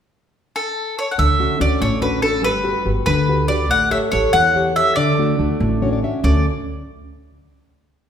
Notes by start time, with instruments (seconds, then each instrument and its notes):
0.56 mandolin A4
0.99 mandolin C#5
1.11 mandolin F#5
1.18 upright bass D2, nylon-string guitar D3, mandolin E5
1.40 nylon-string guitar C#4 D4 F#4
1.59 upright bass D2, nylon-string guitar C#4 D4 F#4, mandolin D5
1.81 upright bass A1, nylon-string guitar A3, mandolin C#5
2.01 nylon-string guitar C#4 D4 F#4, mandolin B4
2.22 nylon-string guitar C#4 D4 F#4, mandolin A4
2.42 upright bass G1, nylon-string guitar G3, mandolin B4
2.64 nylon-string guitar F#4 G4 B4
2.85 upright bass G1, nylon-string guitar F#4 G4 B4
3.06 upright bass D2, nylon-string guitar D3, mandolin B4
3.29 nylon-string guitar F#4 G4 B4
3.48 nylon-string guitar F#4 G4 B4, mandolin D5
3.69 upright bass A1, nylon-string guitar A3, mandolin F#5
3.91 nylon-string guitar G4 A4 C#5, mandolin E5
4.12 upright bass A1, nylon-string guitar G4 A4 C#5, mandolin C#5
4.33 upright bass E2, nylon-string guitar E3, mandolin F#5
4.56 nylon-string guitar G4 A4 C#5
4.76 nylon-string guitar G4 A4 C#5, mandolin E5
4.96 upright bass D2, nylon-string guitar D3, mandolin D5
5.19 nylon-string guitar A3 D4 F#4
5.39 upright bass D2, nylon-string guitar A3 D4 F#4
5.60 upright bass A1, nylon-string guitar A3
5.82 nylon-string guitar C#4 D4 F#4 C#5
5.93 nylon-string guitar D5
6.03 nylon-string guitar C#4 D4 F#4 E5
6.23 upright bass D2, nylon-string guitar D3 A3 C#4 F#4 A4, mandolin D5